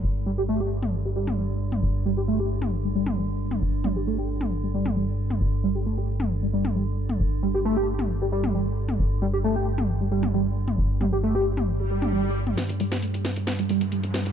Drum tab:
HH |----------------|----------------|----------------|----------------|
SD |----------------|----------------|----------------|----------------|
T2 |-------o---o---o|-------o---o---o|--o----o---o---o|-------o---o---o|

HH |----------------|----------------|----------------|xxoxxxoxxxoxxxox|
SD |----------------|----------------|----------------|o--o--o-o-----o-|
T2 |-------o---o---o|-------o---o---o|--o----o---o---o|----------------|